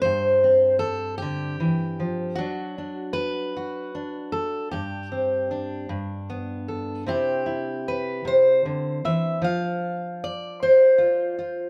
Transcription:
0.02 G2 C5
0.44 C4
0.79 A4
1.18 G4
1.22 D3
1.60 E3
2.00 F3
2.35 F#3 D4 F#4
2.78 D4
3.13 B4
3.57 F#4
3.95 D4
4.32 A4
4.71 G2 G4
5.12 C4
5.51 D4
5.89 G2
6.30 B3
6.68 A4
7.06 C3 C4 E4 G4
7.46 E4
7.88 B4
8.25 C3 C5
8.65 D3
9.05 E3 E5
9.42 F3 F5
10.24 D5
10.63 C5
10.98 F4
11.39 F4

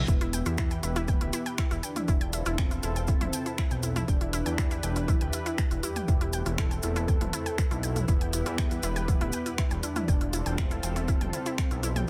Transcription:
Already playing: E4
0.08 E1 E2 E3 B3 E4 G4 B4 E5, kick, closed hi-hat, cabasa
0.21 E4 E5, closed hi-hat
0.33 G5 G6, closed hi-hat, cabasa
0.46 E2 E4 E5, closed hi-hat, cabasa
0.58 E4 E5, finger snap, kick, closed hi-hat, cabasa
0.71 G5 G6, closed hi-hat, cabasa
0.83 E1 E4 E5, closed hi-hat, cabasa
0.96 E4 E5, closed hi-hat, cabasa
1.08 B3 G5 G6, kick, closed hi-hat, mid tom, cabasa
1.21 D1 E4 E5, closed hi-hat
1.33 E4 E5, closed hi-hat, cabasa
1.46 G5 G6, closed hi-hat, cabasa
1.58 E4 E5, finger snap, kick, closed hi-hat, cabasa
1.71 E1 E4 E5, closed hi-hat, cabasa
1.83 D4 G5 G6, closed hi-hat, cabasa
1.96 E4 E5, closed hi-hat, mid tom, cabasa
2.08 E1 C4 E4 F4 A4 E5, kick, closed hi-hat, cabasa
2.21 G5 G6, closed hi-hat
2.33 E4 E5, closed hi-hat, cabasa
2.46 E1 E4 E5, closed hi-hat, cabasa
2.58 C4 G5 G6, finger snap, kick, closed hi-hat, cabasa
2.71 E4 E5, closed hi-hat, cabasa
2.83 E1 E4 E5, closed hi-hat, cabasa
2.96 G5 G6, closed hi-hat, cabasa
3.07 E4 E5, kick, closed hi-hat, cabasa
3.21 E1 E4 E5, closed hi-hat, mid tom
3.33 G5 G6, closed hi-hat, cabasa
3.46 E4 E5, closed hi-hat, cabasa
3.58 E4 E5, finger snap, kick, closed hi-hat, cabasa
3.71 B1 G5 G6, closed hi-hat, cabasa
3.83 E4 E5, closed hi-hat, cabasa
3.96 E4 E5, closed hi-hat, mid tom, cabasa
4.08 E1 D4 G4 B4 G5 G6, kick, closed hi-hat, cabasa
4.21 E4 E5, closed hi-hat
4.33 E4 E5, closed hi-hat, cabasa
4.46 E2 G5 G6, closed hi-hat, cabasa
4.58 E4 E5, finger snap, kick, closed hi-hat, cabasa
4.71 E4 E5, closed hi-hat, cabasa
4.83 E1 G5 G6, closed hi-hat, cabasa
4.96 E4 E5, closed hi-hat, cabasa
5.08 E4 E5, kick, closed hi-hat, mid tom, cabasa
5.21 D1 G5 G6, closed hi-hat
5.33 E4 E5, closed hi-hat, cabasa
5.46 E4 E5, closed hi-hat, cabasa
5.58 G5 G6, finger snap, kick, closed hi-hat, cabasa
5.71 E1 E4 E5, closed hi-hat, cabasa
5.83 E4 G4 E5, closed hi-hat, cabasa
5.96 G5 G6, closed hi-hat, mid tom, cabasa
6.08 E1 A3 C4 E4 E5, kick, closed hi-hat, cabasa
6.21 E4 E5, closed hi-hat
6.33 G5 G6, closed hi-hat, cabasa
6.46 E1 E4 E5, closed hi-hat, cabasa
6.58 E4 A4 E5, finger snap, kick, closed hi-hat, cabasa
6.71 G5 G6, closed hi-hat, cabasa
6.83 E1 E4 E5, closed hi-hat, cabasa
6.96 E4 E5, closed hi-hat, cabasa
7.08 G5 G6, kick, closed hi-hat, cabasa
7.21 E1 E4 E5, closed hi-hat, mid tom
7.33 E4 E5, closed hi-hat, cabasa
7.46 G5 G6, closed hi-hat, cabasa
7.58 E4 E5, finger snap, kick, closed hi-hat, cabasa
7.71 B1 E4 E5, closed hi-hat, cabasa
7.83 G5 G6, closed hi-hat, cabasa
7.96 E4 E5, closed hi-hat, mid tom, cabasa
8.08 E1 G3 B3 E4 G4 B4 E5, kick, closed hi-hat, cabasa
8.21 G5 G6, closed hi-hat
8.33 E4 E5, closed hi-hat, cabasa
8.46 E2 E4 E5, closed hi-hat, cabasa
8.58 G5 G6, finger snap, kick, closed hi-hat, cabasa
8.71 E4 E5, closed hi-hat, cabasa
8.83 E1 E4 E5, closed hi-hat, cabasa
8.96 G5 G6, closed hi-hat, cabasa
9.08 B3 E4 E5, kick, closed hi-hat, mid tom, cabasa
9.21 D1 E4 E5, closed hi-hat
9.32 G5 G6, closed hi-hat, cabasa
9.46 E4 E5, closed hi-hat, cabasa
9.58 E4 E5, finger snap, kick, closed hi-hat, cabasa
9.71 E1 G5 G6, closed hi-hat, cabasa
9.83 D4 E4 E5, closed hi-hat, cabasa
9.96 E4 E5, closed hi-hat, mid tom, cabasa
10.08 E1 C4 F4 A4 G5 G6, kick, closed hi-hat, cabasa
10.21 E4 E5, closed hi-hat
10.33 E4 E5, closed hi-hat, cabasa
10.46 E1 G5 G6, closed hi-hat, cabasa
10.58 C4 E4 E5, finger snap, kick, closed hi-hat, cabasa
10.71 E4 E5, closed hi-hat, cabasa
10.83 E1 G5 G6, closed hi-hat, cabasa
10.96 E4 E5, closed hi-hat, cabasa
11.08 E4 E5, kick, closed hi-hat, cabasa
11.21 E1 G5 G6, closed hi-hat, mid tom
11.33 E4 E5, closed hi-hat, cabasa
11.46 E4 E5, closed hi-hat, cabasa
11.58 G5 G6, finger snap, kick, closed hi-hat, cabasa
11.71 B1 E4 E5, closed hi-hat, cabasa
11.83 E4 E5, closed hi-hat, cabasa
11.96 G5 G6, closed hi-hat, mid tom, cabasa

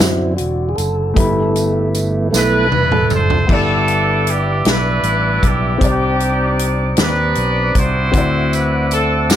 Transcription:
Already playing: D3 F#3 C4 E4 F#4 D5
0.00 F#2 C4, snare, tambourine
0.37 E1 F#4, closed hi-hat
0.69 G#4
0.76 F#1 A4, closed hi-hat, tambourine
1.14 G1 G2 A3 B3 E4 G4, kick, closed hi-hat
1.20 B5
1.56 closed hi-hat, tambourine
1.95 closed hi-hat, tambourine
2.31 B1 A3 B3 D4 E4 A4, snare, tambourine
2.35 B4
2.71 E1 B4, high tom
2.92 A4, mid tom
3.10 F#1 C5, mid tom, tambourine
3.30 floor tom
3.47 G1 G2 B3 D4 E4 G4 B4 D5 E5 D6, kick, crash
3.52 A4 D5
3.88 closed hi-hat
4.27 G4, closed hi-hat
4.65 B1 D4 E4 B4, snare, closed hi-hat
5.03 A1, closed hi-hat
5.43 B1 G4, kick, closed hi-hat
5.78 C2 C3 G3 C4 D4, kick, closed hi-hat
5.83 D#4 G4 D5
6.20 closed hi-hat
6.59 closed hi-hat
6.97 D#2 D4 D#4 B4, snare, closed hi-hat
7.35 B1, closed hi-hat
7.75 C2 E4 F#4 C5, kick, closed hi-hat
8.12 D2 D3 C4 E4 F#4 E5 F#5 D6, kick, closed hi-hat
8.18 D5
8.53 B4, closed hi-hat, tambourine
8.91 A4, closed hi-hat, tambourine
9.29 F#2 C4 F#4, snare, closed hi-hat, tambourine

